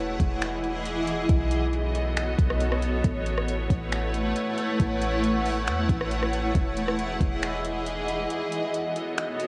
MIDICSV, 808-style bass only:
0, 0, Header, 1, 2, 480
1, 0, Start_track
1, 0, Tempo, 437956
1, 1418, Time_signature, 4, 2, 24, 8
1, 10379, End_track
2, 0, Start_track
2, 0, Title_t, "808-style bass"
2, 0, Program_c, 0, 38
2, 0, Note_on_c, 0, 28, 110
2, 190, Note_off_c, 0, 28, 0
2, 218, Note_on_c, 0, 28, 104
2, 1374, Note_off_c, 0, 28, 0
2, 1418, Note_on_c, 0, 35, 115
2, 2574, Note_off_c, 0, 35, 0
2, 2616, Note_on_c, 0, 35, 106
2, 3308, Note_off_c, 0, 35, 0
2, 3338, Note_on_c, 0, 33, 113
2, 4029, Note_off_c, 0, 33, 0
2, 4057, Note_on_c, 0, 33, 108
2, 4749, Note_off_c, 0, 33, 0
2, 5259, Note_on_c, 0, 33, 104
2, 6219, Note_on_c, 0, 40, 106
2, 6235, Note_off_c, 0, 33, 0
2, 6447, Note_off_c, 0, 40, 0
2, 6457, Note_on_c, 0, 33, 108
2, 7149, Note_off_c, 0, 33, 0
2, 7179, Note_on_c, 0, 28, 113
2, 7870, Note_off_c, 0, 28, 0
2, 7898, Note_on_c, 0, 28, 110
2, 9054, Note_off_c, 0, 28, 0
2, 10379, End_track
0, 0, End_of_file